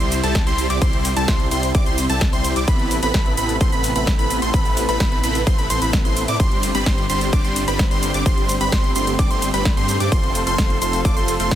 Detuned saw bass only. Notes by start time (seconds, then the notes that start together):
0.00 C2
0.24 C2
0.47 C2
0.70 C2
0.82 C2
1.17 C2
1.28 C2
1.52 C2
1.75 C2
1.86 C2
2.10 C2
2.33 C2
2.56 C2
2.68 A1
3.03 A1
3.14 A1
3.38 A1
3.61 A1
3.72 A1
3.96 A1
4.19 A1
4.42 A1
4.54 A1
4.89 A1
5.00 A1
5.24 A1
5.47 A1
5.59 A1
5.70 A1
5.82 A1
6.05 A1
6.28 A2
6.40 G1
6.75 G1
6.86 G1
7.10 G1
7.33 G1
7.45 G1
7.68 G1
7.91 G1
8.14 G1
8.26 G1
8.61 G1
8.72 G1
8.96 G1
9.19 G1
9.31 G1
9.54 G1
9.77 G2
10.00 G2
10.12 F1
10.47 F1
10.59 F1
10.82 F1
11.05 F1
11.17 F1
11.40 F1